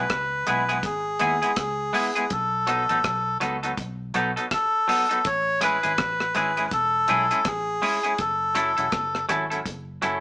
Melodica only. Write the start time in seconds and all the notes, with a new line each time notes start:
Already playing: B4
0.48 B4
0.85 G#4
1.58 G#4
2.32 A4
4.53 A4
5.26 C#5
5.63 B4
6.36 B4
6.67 B4
6.73 A4
7.46 G#4
8.20 A4